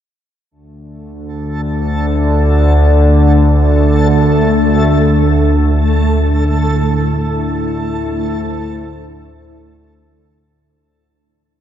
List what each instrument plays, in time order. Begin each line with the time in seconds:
0.50 synth drone D2 D3, synth texture A3 A4
5.48 ambient pad A3
5.93 ambient pad E4
7.70 ambient pad A4 C5